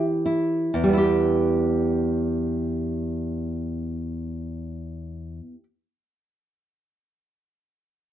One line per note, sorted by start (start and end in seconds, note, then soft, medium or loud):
0.00 0.69 E3 medium
0.00 0.24 E4 soft
0.00 0.74 G4 soft
0.26 0.74 E4 soft
0.74 5.39 E2 medium
0.84 5.49 G3 soft
0.89 5.54 B3 soft
0.93 5.59 E4 soft
0.98 5.63 G4 soft